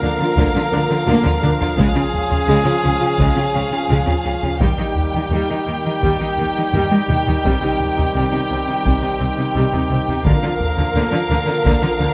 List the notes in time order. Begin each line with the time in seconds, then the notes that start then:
Already playing: D3 F3 A#3 F4 A#4 F5
0.02 D2 D3 D4
0.19 D3 F4
0.37 D2 D3 A#3, taiko
0.56 D3 F4
0.72 D2 D3 D4
0.89 D3 F4
1.07 D2 D3 A#3
1.24 D3 F4, taiko low
1.42 D2 D3 D4
1.60 D3 F4, taiko low
1.77 C#2 C#3 G#3 C#4 G#4, taiko
1.95 C#3 F4
2.14 taiko low
2.29 C#3 F4, taiko low
2.46 C#2 C#3 G#3
2.65 C#3 F4
2.83 C#2 C#3 C#4
3.00 C#3 F4
3.19 C#2 C#3 G#3, taiko
3.36 C#3 F4
3.54 C#2 C#3 C#4
3.71 C#3 F4
3.89 C#2 C#3 G#3
4.06 C#3 F4, taiko low
4.24 C#2 C#3 C#4
4.42 C#3 F4, taiko low
4.59 D#2 D#3 G3 A#3 D#4 G4 G5, taiko
4.78 D#3 D#4
4.96 taiko low
5.14 D#3 D#4, taiko low
5.31 D#2 D#3 G3
5.50 D#3 D#4
5.66 D#2 D#3 A#3
5.85 D#3 D#4
6.01 D#2 D#3 G3, taiko
6.20 D#3 D#4
6.37 D#2 D#3 A#3
6.56 D#3 D#4
6.73 D#2 D#3 G3, taiko low-mid
6.91 D#3 D#4, taiko high
7.08 D#2 D#3 A#3, taiko mid
7.27 D#3 D#4, taiko low
7.43 C2 C3 G3 C4, taiko
7.62 C3 D#4
7.81 taiko low
7.97 C3 D#4, taiko low
8.15 C2 C3 G3
8.32 C3 D#4
8.49 C2 C3 C4
8.67 C3 D#4
8.84 C2 C3 G3, taiko
9.02 C3 D#4
9.20 C2 C3 C4
9.37 C3 D#4
9.55 C2 C3 G3
9.73 C3 D#4, taiko low
9.90 C2 C3 C4
10.08 C3 D#4, taiko low
10.25 D2 D3 F3 A#3 F4 A#4 F5, taiko
10.43 D3 F4
10.60 taiko low
10.78 D3 F4, taiko low
10.95 D2 D3 A#3
11.13 D3 F4
11.30 D2 D3 D4
11.47 D3 F4
11.64 D2 D3 A#3, taiko
11.83 D3 F4
11.99 D2 D3 D4